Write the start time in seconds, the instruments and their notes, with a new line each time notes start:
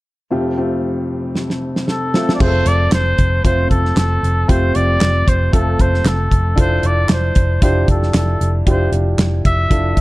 0.30 upright piano F1 F2 A3 C4 F4 G4
0.57 upright piano A3 C4 F4 G4
1.35 snare
1.50 snare
1.76 snare
1.88 trumpet A4, snare
2.14 upright piano A3 C4 F4 A4, snare
2.29 snare
2.35 trumpet D5
2.39 fingered electric bass F1, upright piano A3 C4 F4 G#4, trumpet C5, kick, crash
2.47 upright piano A4
2.66 fingered electric bass F1, trumpet D5, closed hi-hat
2.92 fingered electric bass F1, trumpet C5, snare, clap, closed hi-hat
3.18 fingered electric bass F1, kick, closed hi-hat
3.44 fingered electric bass F1, upright piano A3 C4 F4 C5, trumpet C5, kick, closed hi-hat
3.70 fingered electric bass F1, trumpet A4, kick, closed hi-hat
3.85 snare
3.96 fingered electric bass F1, trumpet A4, snare, clap, closed hi-hat
4.23 fingered electric bass F1, closed hi-hat
4.48 fingered electric bass F1, upright piano A3 C4 F4 G4, trumpet C5, kick, closed hi-hat
4.75 fingered electric bass F1, trumpet D5, closed hi-hat
5.01 fingered electric bass F1, snare, clap, closed hi-hat
5.27 fingered electric bass F1, trumpet C5, kick, closed hi-hat
5.52 fingered electric bass F1, upright piano A3 C4 F4 A4, trumpet A4, kick, closed hi-hat
5.79 fingered electric bass F1, trumpet C5, kick, closed hi-hat
5.94 snare
6.05 fingered electric bass F1, trumpet A4, snare, clap, closed hi-hat
6.31 fingered electric bass F1, kick, closed hi-hat
6.56 fingered electric bass F1, upright piano D4 E4 F4 A4, trumpet C5, kick, closed hi-hat
6.83 fingered electric bass F1, trumpet D5, closed hi-hat
7.09 fingered electric bass F1, trumpet C5, snare, clap, closed hi-hat
7.35 fingered electric bass F1, kick, closed hi-hat
7.62 fingered electric bass F1, upright piano D4 E4 F4 G4, trumpet C5, kick, closed hi-hat
7.88 fingered electric bass F1, trumpet A4, kick, closed hi-hat
8.03 snare
8.14 fingered electric bass F1, trumpet A4, snare, clap, closed hi-hat
8.41 fingered electric bass F1, closed hi-hat
8.66 fingered electric bass F1, upright piano D4 E4 F4 G4, trumpet C5, kick, closed hi-hat
8.92 fingered electric bass F1, closed hi-hat
9.18 fingered electric bass F1, snare, clap, closed hi-hat
9.45 fingered electric bass F1, trumpet E5, kick, closed hi-hat
9.70 fingered electric bass F1, upright piano D4 E4 F4 A4, kick, closed hi-hat
9.97 fingered electric bass F1, kick, closed hi-hat